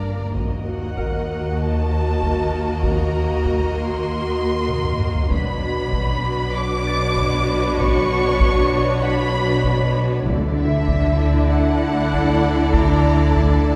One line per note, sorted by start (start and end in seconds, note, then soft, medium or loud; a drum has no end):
0.00 0.33 G1 medium
0.00 0.33 G1 soft
0.00 0.32 G2 soft
0.00 0.32 A#3 soft
0.00 0.32 D4 soft
0.00 0.33 A#4 soft
0.00 0.33 D5 soft
0.00 0.36 A#5 medium
0.36 5.31 D#2 soft
0.36 5.31 D#2 medium
0.36 5.27 A#3 soft
0.36 5.27 F#4 soft
0.36 5.27 A#4 soft
0.36 5.27 D#5 soft
0.36 taiko medium
0.67 1.56 F#5 medium
0.97 4.87 A#4 soft
0.97 4.88 F#5 soft
0.97 taiko medium
1.59 2.83 A5 medium
2.22 taiko medium
2.83 3.76 A#5 medium
2.83 taiko medium
3.45 taiko medium
3.77 5.31 C6 medium
4.69 taiko mid medium
4.85 taiko low-mid medium
5.00 taiko low-mid medium
5.15 taiko low medium
5.30 10.26 B1 medium
5.30 10.22 B1 medium
5.30 10.22 B2 medium
5.30 10.22 D4 medium
5.30 10.22 F#4 medium
5.30 10.22 B4 medium
5.30 10.22 C#5 medium
5.30 6.53 B5 medium
5.30 taiko medium
5.92 taiko medium
6.55 7.79 D6 loud
6.87 10.77 A6 soft
7.17 taiko medium
7.78 9.03 C#6 medium
7.78 taiko medium
8.40 taiko medium
9.02 12.92 F#4 soft
9.02 12.92 F#5 soft
9.02 9.93 B5 loud
9.64 taiko medium
10.25 13.76 D2 medium
10.25 11.14 D3 medium
10.25 13.76 D3 medium
10.25 13.76 D4 medium
10.25 13.76 E4 medium
10.25 13.76 A4 medium
10.25 13.76 D5 medium
10.25 taiko medium
10.56 11.45 E5 medium
10.88 taiko medium
11.50 13.76 E5 soft
11.50 12.74 F#5 medium
12.12 taiko medium
12.73 13.34 A#5 medium
12.73 taiko medium
13.35 13.76 A5 medium
13.35 taiko medium